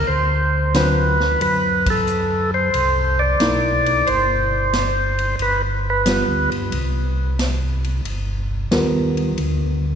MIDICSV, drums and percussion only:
0, 0, Header, 1, 2, 480
1, 0, Start_track
1, 0, Tempo, 663717
1, 61, Time_signature, 4, 2, 24, 8
1, 7197, End_track
2, 0, Start_track
2, 0, Title_t, "Drums"
2, 538, Note_on_c, 9, 38, 62
2, 538, Note_on_c, 9, 44, 60
2, 538, Note_on_c, 9, 51, 58
2, 610, Note_off_c, 9, 38, 0
2, 611, Note_off_c, 9, 44, 0
2, 611, Note_off_c, 9, 51, 0
2, 869, Note_on_c, 9, 38, 45
2, 942, Note_off_c, 9, 38, 0
2, 1019, Note_on_c, 9, 51, 57
2, 1092, Note_off_c, 9, 51, 0
2, 1347, Note_on_c, 9, 51, 69
2, 1348, Note_on_c, 9, 36, 80
2, 1419, Note_off_c, 9, 51, 0
2, 1420, Note_off_c, 9, 36, 0
2, 1497, Note_on_c, 9, 44, 50
2, 1569, Note_off_c, 9, 44, 0
2, 1980, Note_on_c, 9, 51, 57
2, 2052, Note_off_c, 9, 51, 0
2, 2458, Note_on_c, 9, 38, 59
2, 2459, Note_on_c, 9, 44, 51
2, 2459, Note_on_c, 9, 51, 60
2, 2530, Note_off_c, 9, 38, 0
2, 2531, Note_off_c, 9, 44, 0
2, 2531, Note_off_c, 9, 51, 0
2, 2794, Note_on_c, 9, 51, 43
2, 2866, Note_off_c, 9, 51, 0
2, 2946, Note_on_c, 9, 51, 56
2, 3018, Note_off_c, 9, 51, 0
2, 3424, Note_on_c, 9, 38, 64
2, 3424, Note_on_c, 9, 44, 50
2, 3424, Note_on_c, 9, 51, 60
2, 3496, Note_off_c, 9, 38, 0
2, 3497, Note_off_c, 9, 44, 0
2, 3497, Note_off_c, 9, 51, 0
2, 3750, Note_on_c, 9, 51, 44
2, 3823, Note_off_c, 9, 51, 0
2, 3899, Note_on_c, 9, 51, 53
2, 3971, Note_off_c, 9, 51, 0
2, 4380, Note_on_c, 9, 38, 65
2, 4380, Note_on_c, 9, 44, 59
2, 4380, Note_on_c, 9, 51, 65
2, 4452, Note_off_c, 9, 38, 0
2, 4453, Note_off_c, 9, 44, 0
2, 4453, Note_off_c, 9, 51, 0
2, 4713, Note_on_c, 9, 51, 41
2, 4785, Note_off_c, 9, 51, 0
2, 4861, Note_on_c, 9, 51, 58
2, 4933, Note_off_c, 9, 51, 0
2, 5345, Note_on_c, 9, 38, 67
2, 5346, Note_on_c, 9, 44, 51
2, 5346, Note_on_c, 9, 51, 61
2, 5417, Note_off_c, 9, 38, 0
2, 5418, Note_off_c, 9, 44, 0
2, 5418, Note_off_c, 9, 51, 0
2, 5673, Note_on_c, 9, 51, 42
2, 5745, Note_off_c, 9, 51, 0
2, 5824, Note_on_c, 9, 51, 55
2, 5896, Note_off_c, 9, 51, 0
2, 6302, Note_on_c, 9, 38, 64
2, 6303, Note_on_c, 9, 44, 54
2, 6303, Note_on_c, 9, 51, 57
2, 6374, Note_off_c, 9, 38, 0
2, 6375, Note_off_c, 9, 44, 0
2, 6375, Note_off_c, 9, 51, 0
2, 6633, Note_on_c, 9, 51, 42
2, 6705, Note_off_c, 9, 51, 0
2, 6781, Note_on_c, 9, 51, 51
2, 6853, Note_off_c, 9, 51, 0
2, 7197, End_track
0, 0, End_of_file